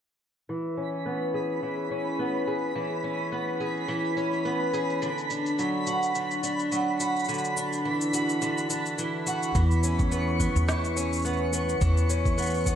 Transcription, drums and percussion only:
0.77 cabasa medium
1.91 cabasa medium
2.19 cabasa soft
2.47 cabasa medium
2.63 cabasa soft
2.76 cabasa soft
2.92 cabasa soft
3.04 cabasa medium
3.20 cabasa soft
3.33 cabasa soft
3.48 cabasa soft
3.61 cabasa medium
3.77 cabasa soft
3.89 cabasa soft
4.05 cabasa soft
4.17 cabasa medium
4.33 cabasa soft
4.45 cabasa soft
4.74 cabasa medium
4.90 cabasa soft
5.02 cabasa soft
5.18 cabasa soft
5.30 cabasa medium
5.46 cabasa soft
5.59 cabasa soft
5.87 cabasa medium
6.03 cabasa soft
6.15 cabasa soft
6.31 cabasa soft
6.44 cabasa medium
6.60 cabasa soft
6.72 cabasa soft
7.00 cabasa medium
7.16 cabasa soft
7.19 cabasa soft
7.25 cabasa soft
7.29 cabasa soft
7.34 cabasa soft
7.38 cabasa soft
7.44 cabasa soft
7.57 cabasa medium
7.73 cabasa soft
8.01 cabasa soft
8.14 cabasa medium
8.29 cabasa soft
8.42 cabasa soft
8.58 cabasa soft
8.70 cabasa medium
8.86 cabasa soft
8.98 cabasa soft
9.27 cabasa medium
9.43 cabasa soft
9.55 kick loud
9.55 cabasa soft
9.71 cabasa soft
9.84 cabasa medium
9.99 kick medium
9.99 cabasa soft
10.12 cabasa soft
10.40 kick medium
10.40 cabasa medium
10.56 cabasa soft
10.69 snare medium
10.69 cabasa soft
10.85 cabasa soft
10.97 cabasa medium
11.13 cabasa soft
11.16 cabasa soft
11.19 cabasa soft
11.22 cabasa soft
11.25 cabasa soft
11.29 cabasa soft
11.37 cabasa soft
11.53 cabasa medium
11.69 cabasa soft
11.81 kick loud
11.81 cabasa soft
11.97 cabasa soft
12.10 cabasa medium
12.26 kick medium
12.26 cabasa soft
12.38 cabasa soft
12.42 cabasa soft
12.46 cabasa soft
12.50 cabasa soft
12.54 cabasa soft
12.57 cabasa soft
12.60 cabasa soft
12.63 kick medium
12.63 cabasa soft
12.67 cabasa medium

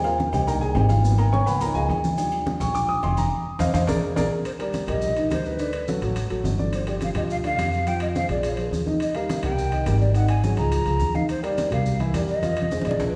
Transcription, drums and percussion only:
0.04 high conga soft
0.04 low agogo medium
0.04 maracas soft
0.18 high conga medium
0.18 low timbale medium
0.18 maracas soft
0.33 high conga soft
0.33 low conga medium
0.33 low agogo loud
0.33 maracas medium
0.47 high conga soft
0.47 low agogo medium
0.47 maracas medium
0.62 high conga soft
0.62 maracas soft
0.75 high conga medium
0.75 low timbale medium
0.75 low agogo loud
0.75 maracas soft
0.89 high conga medium
0.89 low agogo medium
0.89 maracas medium
1.05 high conga soft
1.05 maracas medium
1.18 high conga soft
1.18 low agogo loud
1.18 maracas soft
1.32 high conga loud
1.32 low timbale medium
1.32 low agogo medium
1.32 maracas soft
1.47 high conga soft
1.47 low agogo medium
1.47 maracas medium
1.61 high conga soft
1.61 low agogo loud
1.61 maracas medium
1.75 high conga soft
1.75 maracas soft
1.90 high conga medium
1.90 low timbale medium
1.90 low agogo medium
1.90 maracas soft
2.04 high conga loud
2.04 maracas medium
2.18 high conga soft
2.18 low agogo loud
2.18 maracas medium
2.32 high conga soft
2.32 low agogo medium
2.32 maracas soft
2.46 high conga loud
2.46 low timbale medium
2.46 maracas soft
2.60 high conga soft
2.60 low conga medium
2.60 low agogo loud
2.60 maracas medium
2.74 high conga soft
2.74 low agogo medium
2.74 maracas medium
2.89 high conga soft
2.89 maracas soft
3.03 high conga medium
3.03 low timbale medium
3.03 low agogo loud
3.03 maracas soft
3.17 high conga medium
3.17 low agogo medium
3.17 maracas medium
3.59 high conga loud
3.59 high timbale loud
3.59 maracas loud
3.74 high conga loud
3.74 high timbale loud
3.74 maracas loud
3.87 high conga loud
3.87 high timbale loud
3.87 maracas loud
4.16 high conga loud
4.16 high timbale loud
4.16 maracas loud
4.45 high conga soft
4.45 high timbale medium
4.45 maracas medium
4.60 high conga soft
4.60 high timbale medium
4.60 maracas soft
4.74 high conga medium
4.74 high timbale medium
4.74 maracas medium
4.88 high conga soft
4.88 low conga medium
4.88 high timbale loud
4.88 maracas soft
5.02 high conga soft
5.02 low conga medium
5.02 maracas medium
5.17 high conga soft
5.17 high timbale medium
5.17 maracas soft
5.31 high conga medium
5.31 high timbale medium
5.31 maracas medium
5.45 high conga soft
5.45 maracas soft
5.59 high conga soft
5.59 high timbale medium
5.59 maracas medium
5.73 high conga soft
5.73 high timbale medium
5.73 maracas soft
5.88 high conga medium
5.88 maracas medium
6.02 high conga soft
6.02 high timbale medium
6.02 maracas soft
6.16 high conga soft
6.16 high timbale medium
6.16 maracas medium
6.30 high conga soft
6.30 high timbale medium
6.30 maracas soft
6.45 high conga medium
6.45 low timbale medium
6.45 maracas medium
6.59 high conga medium
6.59 maracas soft
6.73 high conga soft
6.73 high timbale medium
6.73 maracas medium
6.87 high conga soft
6.87 high timbale medium
6.87 maracas soft
7.01 high conga medium
7.01 high timbale medium
7.01 maracas medium
7.15 high conga soft
7.15 low conga medium
7.15 high timbale loud
7.15 maracas soft
7.30 high conga soft
7.30 maracas medium
7.44 high conga soft
7.44 high timbale medium
7.44 maracas soft
7.59 high conga medium
7.59 high timbale loud
7.59 maracas medium
7.73 high conga soft
7.73 maracas soft
7.87 high conga soft
7.87 high timbale medium
7.87 maracas medium
8.00 high conga soft
8.00 high timbale loud
8.00 maracas soft
8.16 high conga medium
8.16 maracas medium
8.29 high conga soft
8.29 high timbale medium
8.29 maracas soft
8.43 high conga soft
8.43 high timbale medium
8.43 maracas medium
8.57 high conga soft
8.57 high timbale medium
8.57 maracas soft
8.73 high conga medium
8.73 maracas medium
8.87 high conga medium
8.87 maracas soft
9.00 high conga soft
9.00 high timbale medium
9.00 maracas medium
9.15 high conga soft
9.15 high timbale medium
9.15 maracas soft
9.29 high conga loud
9.29 high timbale medium
9.29 maracas medium
9.43 high conga soft
9.43 low conga medium
9.43 high timbale loud
9.43 maracas soft
9.58 high conga soft
9.58 maracas medium
9.72 high conga soft
9.72 high timbale medium
9.72 maracas soft
9.86 high conga medium
9.86 high timbale medium
9.86 low timbale medium
9.86 maracas medium
10.01 high conga soft
10.01 maracas soft
10.14 high conga soft
10.14 high timbale medium
10.14 maracas medium
10.29 high conga soft
10.29 high timbale loud
10.29 maracas soft
10.44 high conga medium
10.44 maracas medium
10.57 high conga soft
10.57 high timbale medium
10.57 maracas soft
10.72 high conga soft
10.72 high timbale medium
10.72 maracas medium
10.86 high conga soft
10.86 high timbale medium
10.86 maracas soft
11.00 high conga medium
11.00 maracas medium
11.14 high conga medium
11.14 maracas soft
11.29 high conga soft
11.29 high timbale medium
11.29 maracas medium
11.44 high conga soft
11.44 high timbale medium
11.44 maracas soft
11.58 high conga medium
11.58 high timbale medium
11.58 maracas medium
11.72 high conga soft
11.72 low conga medium
11.72 high timbale medium
11.72 maracas soft
11.86 high conga soft
11.86 maracas medium
12.00 high conga soft
12.00 high timbale medium
12.00 maracas soft
12.14 high conga medium
12.14 high timbale loud
12.14 low timbale medium
12.14 maracas medium
12.29 high conga soft
12.29 maracas soft
12.43 high conga medium
12.43 high timbale medium
12.43 maracas medium
12.57 high timbale medium
12.57 maracas soft
12.62 high conga medium
12.71 high conga medium
12.71 maracas medium
12.82 high conga medium
12.82 high timbale medium
12.82 maracas soft
12.91 high conga loud
13.00 low conga medium
13.00 high timbale loud
13.00 maracas medium

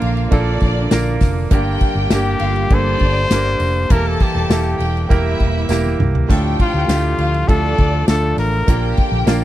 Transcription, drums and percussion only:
0.02 ride medium
0.17 ride soft
0.32 kick loud
0.32 ride medium
0.60 kick medium
0.60 ride medium
0.91 snare loud
0.91 ride medium
0.91 tambourine medium
1.06 ride soft
1.20 kick medium
1.20 snare soft
1.20 open hi-hat medium
1.20 ride medium
1.51 kick loud
1.51 hi-hat pedal medium
1.51 ride medium
1.81 kick medium
1.81 ride medium
2.10 snare loud
2.10 ride medium
2.10 tambourine medium
2.39 ride medium
2.56 ride soft
2.70 kick loud
2.70 ride medium
2.99 kick medium
2.99 ride soft
3.30 snare loud
3.30 ride medium
3.30 tambourine medium
3.45 ride soft
3.60 open hi-hat medium
3.60 ride medium
3.90 kick loud
3.90 hi-hat pedal medium
3.90 ride medium
4.20 kick medium
4.20 ride medium
4.50 snare loud
4.50 ride medium
4.50 tambourine medium
4.80 ride medium
4.97 ride soft
5.10 kick loud
5.10 ride medium
5.40 kick medium
5.40 ride soft
5.69 snare medium
5.69 tambourine medium
5.85 high tom medium
6.00 mid tom medium
6.15 floor tom medium
6.30 kick loud
6.30 splash medium
6.59 kick medium
6.59 ride medium
6.89 snare loud
6.89 ride medium
6.89 tambourine medium
7.18 ride medium
7.34 ride soft
7.49 kick loud
7.49 ride medium
7.78 kick medium
7.78 ride soft
8.08 snare loud
8.08 ride medium
8.08 tambourine medium
8.38 snare soft
8.38 open hi-hat medium
8.38 ride medium
8.68 kick loud
8.68 hi-hat pedal medium
8.68 ride medium
8.97 kick loud
8.97 ride medium
9.27 snare medium
9.27 ride medium
9.27 tambourine medium

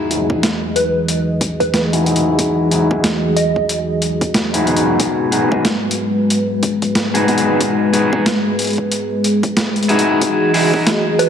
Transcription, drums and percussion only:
0.11 closed hi-hat medium
0.30 kick loud
0.43 snare loud
0.43 closed hi-hat medium
0.76 closed hi-hat medium
1.08 closed hi-hat medium
1.41 kick medium
1.41 closed hi-hat medium
1.60 kick medium
1.60 closed hi-hat soft
1.74 snare loud
1.74 closed hi-hat medium
1.93 closed hi-hat medium
2.06 closed hi-hat soft
2.16 closed hi-hat medium
2.39 kick loud
2.39 closed hi-hat medium
2.71 closed hi-hat medium
2.91 kick loud
3.04 snare loud
3.04 closed hi-hat medium
3.37 closed hi-hat medium
3.56 kick medium
3.69 closed hi-hat medium
4.02 closed hi-hat medium
4.21 kick loud
4.21 closed hi-hat soft
4.34 snare loud
4.34 closed hi-hat medium
4.54 closed hi-hat medium
4.67 closed hi-hat soft
4.77 closed hi-hat medium
5.00 kick loud
5.00 closed hi-hat medium
5.32 closed hi-hat medium
5.52 kick loud
5.65 snare loud
5.65 closed hi-hat medium
5.91 closed hi-hat medium
6.30 closed hi-hat medium
6.63 kick loud
6.63 closed hi-hat medium
6.82 kick medium
6.82 closed hi-hat soft
6.95 snare loud
6.95 closed hi-hat medium
7.15 closed hi-hat medium
7.28 closed hi-hat soft
7.38 closed hi-hat medium
7.61 kick loud
7.61 closed hi-hat medium
7.94 closed hi-hat medium
8.13 kick loud
8.26 snare loud
8.26 closed hi-hat medium
8.59 closed hi-hat medium
8.62 closed hi-hat medium
8.64 closed hi-hat soft
8.67 closed hi-hat soft
8.70 closed hi-hat soft
8.73 closed hi-hat soft
8.76 kick medium
8.76 closed hi-hat soft
8.92 closed hi-hat medium
9.24 closed hi-hat medium
9.43 kick loud
9.43 closed hi-hat soft
9.57 snare loud
9.57 closed hi-hat medium
9.76 closed hi-hat soft
9.83 closed hi-hat soft
9.89 closed hi-hat soft
9.99 closed hi-hat medium
10.21 kick loud
10.21 closed hi-hat medium
10.54 open hi-hat medium
10.74 kick loud
10.87 snare loud
10.87 closed hi-hat medium
11.19 cross-stick medium
11.19 closed hi-hat medium

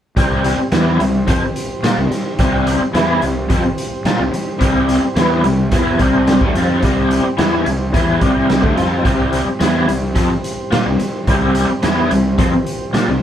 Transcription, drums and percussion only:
0.17 kick medium
0.17 closed hi-hat medium
0.44 closed hi-hat medium
0.72 snare medium
0.72 closed hi-hat medium
1.00 closed hi-hat medium
1.28 kick loud
1.28 closed hi-hat medium
1.56 closed hi-hat medium
1.84 snare loud
1.84 closed hi-hat medium
2.12 snare soft
2.12 closed hi-hat medium
2.39 kick medium
2.39 closed hi-hat medium
2.67 closed hi-hat medium
2.95 snare medium
2.95 closed hi-hat medium
3.22 closed hi-hat medium
3.50 kick loud
3.50 closed hi-hat medium
3.78 closed hi-hat medium
4.05 snare medium
4.05 closed hi-hat medium
4.34 closed hi-hat medium
4.61 kick medium
4.61 closed hi-hat medium
4.89 closed hi-hat medium
5.16 snare loud
5.16 closed hi-hat medium
5.44 closed hi-hat medium
5.72 kick loud
5.72 closed hi-hat medium
5.99 kick medium
5.99 closed hi-hat medium
6.27 snare medium
6.27 closed hi-hat medium
6.41 kick loud
6.55 snare soft
6.55 closed hi-hat medium
6.82 kick medium
6.82 closed hi-hat medium
7.11 closed hi-hat medium
7.38 snare loud
7.38 closed hi-hat medium
7.66 closed hi-hat medium
7.94 kick medium
7.94 closed hi-hat medium
8.21 kick loud
8.21 closed hi-hat medium
8.50 snare medium
8.50 closed hi-hat medium
8.63 kick loud
8.77 snare soft
8.77 closed hi-hat medium
9.05 kick medium
9.05 closed hi-hat medium
9.33 closed hi-hat medium
9.61 snare medium
9.61 closed hi-hat medium
9.89 closed hi-hat medium
10.15 kick medium
10.15 closed hi-hat medium
10.44 closed hi-hat medium
10.72 snare loud
10.72 closed hi-hat medium
10.99 closed hi-hat medium
11.27 kick medium
11.27 closed hi-hat medium
11.55 closed hi-hat medium
11.83 snare medium
11.83 closed hi-hat medium
12.11 closed hi-hat medium
12.38 kick loud
12.38 closed hi-hat medium
12.66 closed hi-hat medium
12.94 snare medium
12.94 closed hi-hat medium

